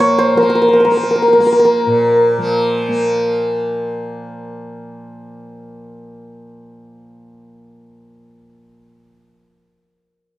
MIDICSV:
0, 0, Header, 1, 3, 480
1, 0, Start_track
1, 0, Tempo, 361664
1, 472, Time_signature, 4, 2, 24, 8
1, 13778, End_track
2, 0, Start_track
2, 0, Title_t, "Santur"
2, 0, Program_c, 0, 15
2, 0, Note_on_c, 0, 70, 82
2, 0, Note_on_c, 0, 73, 107
2, 246, Note_on_c, 0, 72, 102
2, 325, Note_off_c, 0, 73, 0
2, 489, Note_off_c, 0, 70, 0
2, 495, Note_on_c, 0, 70, 83
2, 561, Note_off_c, 0, 70, 0
2, 566, Note_on_c, 0, 70, 60
2, 653, Note_off_c, 0, 70, 0
2, 659, Note_on_c, 0, 70, 70
2, 727, Note_off_c, 0, 70, 0
2, 733, Note_on_c, 0, 70, 58
2, 815, Note_off_c, 0, 70, 0
2, 820, Note_on_c, 0, 70, 68
2, 903, Note_off_c, 0, 70, 0
2, 909, Note_on_c, 0, 70, 58
2, 967, Note_off_c, 0, 70, 0
2, 973, Note_on_c, 0, 70, 63
2, 1058, Note_off_c, 0, 70, 0
2, 1063, Note_on_c, 0, 70, 55
2, 1119, Note_off_c, 0, 70, 0
2, 1124, Note_on_c, 0, 70, 67
2, 1213, Note_off_c, 0, 70, 0
2, 1218, Note_on_c, 0, 70, 56
2, 1284, Note_off_c, 0, 70, 0
2, 1290, Note_on_c, 0, 70, 61
2, 1366, Note_off_c, 0, 70, 0
2, 1371, Note_on_c, 0, 70, 54
2, 1463, Note_off_c, 0, 70, 0
2, 1469, Note_on_c, 0, 70, 63
2, 1530, Note_off_c, 0, 70, 0
2, 1535, Note_on_c, 0, 70, 56
2, 1618, Note_off_c, 0, 70, 0
2, 1623, Note_on_c, 0, 70, 61
2, 1694, Note_off_c, 0, 70, 0
2, 1700, Note_on_c, 0, 70, 58
2, 1760, Note_off_c, 0, 70, 0
2, 1765, Note_on_c, 0, 70, 67
2, 1857, Note_off_c, 0, 70, 0
2, 1862, Note_on_c, 0, 70, 60
2, 1942, Note_off_c, 0, 70, 0
2, 1947, Note_on_c, 0, 70, 67
2, 2018, Note_off_c, 0, 70, 0
2, 2023, Note_on_c, 0, 70, 62
2, 2111, Note_off_c, 0, 70, 0
2, 2116, Note_on_c, 0, 70, 72
2, 2183, Note_off_c, 0, 70, 0
2, 2188, Note_on_c, 0, 70, 69
2, 3743, Note_off_c, 0, 72, 0
2, 5942, Note_off_c, 0, 70, 0
2, 13778, End_track
3, 0, Start_track
3, 0, Title_t, "Tanpura"
3, 0, Program_c, 1, 104
3, 0, Note_on_c, 1, 46, 66
3, 0, Note_on_c, 1, 53, 64
3, 0, Note_on_c, 1, 58, 64
3, 465, Note_off_c, 1, 53, 0
3, 465, Note_on_c, 1, 53, 63
3, 1150, Note_off_c, 1, 58, 0
3, 1150, Note_on_c, 1, 58, 67
3, 1829, Note_off_c, 1, 58, 0
3, 1829, Note_on_c, 1, 58, 65
3, 2471, Note_off_c, 1, 46, 0
3, 2477, Note_on_c, 1, 46, 67
3, 3161, Note_off_c, 1, 53, 0
3, 3161, Note_on_c, 1, 53, 75
3, 3830, Note_off_c, 1, 58, 0
3, 3830, Note_on_c, 1, 58, 65
3, 11653, Note_off_c, 1, 58, 0
3, 11966, Note_off_c, 1, 46, 0
3, 12458, Note_off_c, 1, 53, 0
3, 13778, End_track
0, 0, End_of_file